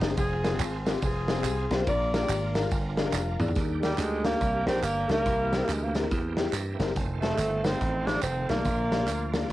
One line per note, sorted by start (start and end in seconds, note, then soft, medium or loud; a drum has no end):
0.00 0.14 F#1 medium
0.00 0.15 C4 medium
0.00 0.07 C4 medium
0.00 0.14 D#4 medium
0.00 0.07 D#4 medium
0.00 0.14 G#4 medium
0.00 0.16 G#4 medium
0.00 0.08 G#4 medium
0.00 snare loud
0.00 ride soft
0.00 tambourine medium
0.10 0.18 C4 medium
0.10 0.18 D#4 medium
0.10 0.18 G#4 medium
0.17 0.54 F1 loud
0.17 1.84 C4 medium
0.17 0.99 C4 medium
0.17 1.84 F4 medium
0.17 0.99 F4 medium
0.17 1.84 G#4 medium
0.17 0.58 G#4 loud
0.17 kick loud
0.17 ride medium
0.17 tambourine medium
0.45 0.50 C4 medium
0.45 0.50 F4 medium
0.45 0.50 G#4 medium
0.45 snare loud
0.45 ride medium
0.45 tambourine medium
0.53 0.65 C4 medium
0.53 0.65 F4 medium
0.53 0.65 G#4 medium
0.59 0.96 G#1 loud
0.59 clap loud
0.59 ride medium
0.59 tambourine medium
0.86 0.97 C4 medium
0.86 0.97 F4 medium
0.86 0.98 G4 medium
0.86 1.02 G4 medium
0.86 snare loud
0.86 ride medium
0.86 tambourine medium
1.02 1.45 F1 medium
1.02 1.84 C4 medium
1.02 1.84 F4 medium
1.02 1.72 G#4 loud
1.02 kick loud
1.02 ride medium
1.02 tambourine medium
1.28 1.34 C4 medium
1.28 1.34 F4 medium
1.28 1.35 G#4 medium
1.28 snare loud
1.28 ride medium
1.28 tambourine medium
1.38 1.49 C4 medium
1.38 1.50 F4 medium
1.38 1.50 G4 medium
1.44 1.67 C2 loud
1.44 clap loud
1.44 ride medium
1.44 tambourine loud
1.70 1.84 B1 medium
1.70 1.76 C4 medium
1.70 1.77 F4 medium
1.70 1.77 G4 medium
1.70 1.88 C5 loud
1.70 snare medium
1.70 ride soft
1.70 tambourine medium
1.80 1.87 C4 medium
1.80 1.88 F4 medium
1.80 1.88 A#4 medium
1.87 2.23 A#1 loud
1.87 2.52 A#2 medium
1.87 3.53 D4 medium
1.87 3.53 F4 medium
1.87 2.14 F4 medium
1.87 3.53 A#4 medium
1.87 2.14 A#4 medium
1.87 2.14 D5 loud
1.87 kick loud
1.87 ride medium
1.87 tambourine medium
2.13 2.19 D4 medium
2.13 2.19 F4 medium
2.13 2.95 F4 medium
2.13 2.19 A#4 medium
2.13 2.95 A#4 medium
2.13 2.54 D5 medium
2.13 snare loud
2.13 ride medium
2.13 tambourine medium
2.22 2.34 D4 medium
2.22 2.34 F4 medium
2.22 2.34 G4 medium
2.29 2.65 G#1 medium
2.29 clap loud
2.29 ride medium
2.29 tambourine medium
2.55 2.66 D4 medium
2.55 2.67 F4 medium
2.55 2.67 A#4 medium
2.55 snare loud
2.55 ride medium
2.55 tambourine medium
2.71 3.07 G1 medium
2.71 kick loud
2.71 ride medium
2.71 tambourine medium
2.97 3.03 D4 medium
2.97 3.03 F4 medium
2.97 3.04 G#4 loud
2.97 snare loud
2.97 ride medium
2.97 tambourine medium
3.05 3.18 D4 medium
3.05 3.13 F4 medium
3.05 3.13 A#4 loud
3.13 3.36 F1 medium
3.13 3.40 F4 medium
3.13 3.39 A#4 medium
3.13 snare soft
3.13 clap loud
3.13 tambourine loud
3.40 3.54 E2 medium
3.40 3.81 G#4 medium
3.40 3.81 D5 medium
3.40 mid tom medium
3.40 tambourine soft
3.48 floor tom loud
3.55 3.92 D#2 loud
3.55 4.21 D#3 medium
3.55 5.23 G3 medium
3.55 5.23 A#3 medium
3.55 5.23 D4 medium
3.55 3.63 F4 medium
3.55 kick loud
3.55 closed hi-hat medium
3.55 tambourine medium
3.62 5.26 G4 medium
3.81 3.93 G3 medium
3.81 4.01 G3 medium
3.81 4.64 A#3 medium
3.81 3.93 D4 medium
3.81 4.24 D4 medium
3.81 3.93 D#4 medium
3.81 4.23 G4 medium
3.81 3.93 A#4 medium
3.81 snare loud
3.81 closed hi-hat medium
3.81 tambourine medium
3.98 4.34 D2 medium
3.98 4.27 G#3 medium
3.98 clap medium
3.98 closed hi-hat medium
3.98 tambourine medium
4.24 4.35 G3 medium
4.24 4.67 A#3 medium
4.24 4.35 D4 medium
4.24 5.06 D4 medium
4.24 4.36 D#4 medium
4.24 4.36 G4 medium
4.24 5.06 G4 medium
4.24 4.68 A#4 loud
4.24 snare loud
4.24 closed hi-hat medium
4.24 tambourine medium
4.41 4.63 C2 medium
4.41 kick loud
4.41 closed hi-hat medium
4.41 tambourine medium
4.66 4.81 A#1 medium
4.66 4.78 G3 medium
4.66 4.86 C4 loud
4.66 4.78 D4 medium
4.66 4.78 D#4 medium
4.66 4.78 A#4 medium
4.66 4.82 C5 medium
4.66 snare loud
4.66 closed hi-hat medium
4.66 tambourine medium
4.83 5.05 G1 medium
4.83 5.10 A#3 medium
4.83 5.07 A#4 loud
4.83 clap loud
4.83 closed hi-hat medium
4.83 tambourine medium
5.08 5.23 C#2 medium
5.08 5.20 G3 medium
5.08 5.20 D4 medium
5.08 5.20 D#4 medium
5.08 5.90 E4 medium
5.08 5.90 G4 medium
5.08 5.90 A#4 loud
5.08 5.21 A#4 medium
5.08 snare medium
5.08 closed hi-hat medium
5.08 tambourine soft
5.12 5.59 A#3 medium
5.26 5.62 C2 medium
5.26 5.91 C3 medium
5.26 6.93 E3 medium
5.26 6.93 A#3 medium
5.26 6.93 C4 medium
5.26 6.93 G4 medium
5.26 kick loud
5.26 closed hi-hat medium
5.26 tambourine medium
5.51 5.63 G3 medium
5.51 5.63 C4 medium
5.51 5.63 E4 medium
5.51 5.63 A#4 medium
5.51 snare loud
5.51 closed hi-hat medium
5.51 tambourine medium
5.58 5.66 C4 medium
5.65 6.05 D2 medium
5.65 5.74 A#3 medium
5.65 closed hi-hat medium
5.69 5.85 G#3 medium
5.69 clap medium
5.69 tambourine medium
5.84 5.95 A#3 medium
5.94 6.06 G3 medium
5.94 6.06 C4 medium
5.94 6.06 E4 medium
5.94 6.06 A#4 medium
5.94 snare loud
5.94 closed hi-hat medium
5.94 tambourine medium
6.11 6.47 E2 loud
6.11 kick loud
6.11 closed hi-hat medium
6.11 tambourine medium
6.37 6.48 G3 medium
6.37 6.48 C4 medium
6.37 6.48 E4 medium
6.37 6.48 G4 medium
6.37 6.46 G5 medium
6.37 snare loud
6.37 closed hi-hat medium
6.37 tambourine medium
6.46 6.53 F5 medium
6.53 6.75 G2 medium
6.53 6.92 E5 medium
6.53 clap loud
6.53 closed hi-hat medium
6.53 tambourine loud
6.79 6.93 F#1 medium
6.79 6.90 G3 medium
6.79 6.90 C4 medium
6.79 6.90 E4 medium
6.79 6.91 A#4 medium
6.79 snare medium
6.79 closed hi-hat medium
6.79 tambourine medium
6.95 7.32 F1 loud
6.95 8.62 D#3 medium
6.95 8.62 A3 medium
6.95 8.62 C4 medium
6.95 8.62 F4 medium
6.95 kick loud
6.95 closed hi-hat medium
6.95 tambourine medium
7.21 7.66 A3 medium
7.21 7.33 A3 medium
7.21 8.04 C4 medium
7.21 7.33 D#4 medium
7.21 7.65 D#4 medium
7.21 7.33 F4 medium
7.21 7.61 A4 medium
7.21 7.33 C5 medium
7.21 snare loud
7.21 closed hi-hat medium
7.21 tambourine soft
7.38 7.74 G1 medium
7.38 clap medium
7.38 closed hi-hat medium
7.38 tambourine medium
7.64 7.75 A3 medium
7.64 8.09 C4 medium
7.64 7.76 D#4 medium
7.64 8.46 D#4 medium
7.64 7.76 F4 medium
7.64 8.46 A4 medium
7.64 8.04 C5 medium
7.64 7.76 C5 medium
7.64 snare loud
7.64 closed hi-hat medium
7.64 tambourine medium
7.81 8.17 A1 medium
7.81 kick loud
7.81 closed hi-hat medium
7.81 tambourine medium
8.06 8.17 A3 medium
8.06 8.23 D4 loud
8.06 8.18 D#4 medium
8.06 8.18 F4 medium
8.06 8.18 C5 medium
8.06 8.23 D5 medium
8.06 snare loud
8.06 closed hi-hat medium
8.06 tambourine medium
8.23 8.45 F1 medium
8.23 8.51 C4 medium
8.23 8.49 C5 loud
8.23 clap medium
8.23 closed hi-hat medium
8.23 tambourine loud
8.49 8.63 B1 medium
8.49 8.60 A3 medium
8.49 9.35 A#3 medium
8.49 9.30 D4 medium
8.49 8.60 D#4 medium
8.49 9.30 F4 medium
8.49 8.60 F4 medium
8.49 9.34 A#4 medium
8.49 8.61 D5 medium
8.49 snare medium
8.49 closed hi-hat medium
8.49 tambourine soft
8.65 9.08 A#1 loud
8.65 9.31 A#2 medium
8.65 9.53 D3 medium
8.65 9.53 F3 medium
8.65 9.53 A#3 medium
8.65 9.53 F4 medium
8.65 kick loud
8.65 closed hi-hat medium
8.65 tambourine medium
8.92 9.03 A#3 medium
8.92 9.03 D4 medium
8.92 9.03 F4 medium
8.92 9.03 D5 medium
8.92 snare loud
8.92 closed hi-hat medium
8.92 tambourine soft
9.07 9.44 D2 medium
9.07 clap medium
9.07 closed hi-hat medium
9.07 tambourine medium
9.34 9.45 A#3 medium
9.34 9.45 D4 medium
9.34 9.46 F4 medium
9.34 9.46 D5 medium
9.34 snare loud
9.34 closed hi-hat medium
9.34 tambourine medium